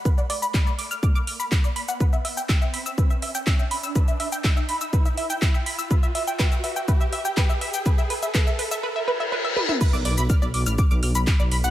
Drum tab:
CC |----------------|----------------|----------------|----------------|
HH |--o---o---o---o-|--o---o---o---o-|--o---o---o---o-|--o---o---o---o-|
SH |xx-xxx-xxx-xxx-x|xx-xxx-xxx-xxx-x|xx-xxx-xxx-xxx-x|xx-xxx-xxx-xxx-x|
CP |----x-------x---|----x-------x---|----x-------x---|----x-------x---|
T1 |----------------|----------------|----------------|----------------|
T2 |----------------|----------------|----------------|----------------|
BD |o---o---o---o---|o---o---o---o---|o---o---o---o---|o---o---o---o---|

CC |----------------|x---------------|
HH |--o---o---------|--o---o---o---o-|
SH |xx-xxx-x--------|xx-xxx-xxx-xxx-x|
CP |----x-----------|------------x---|
T1 |--------------o-|----------------|
T2 |---------------o|----------------|
BD |o---o-----------|o---o---o---o---|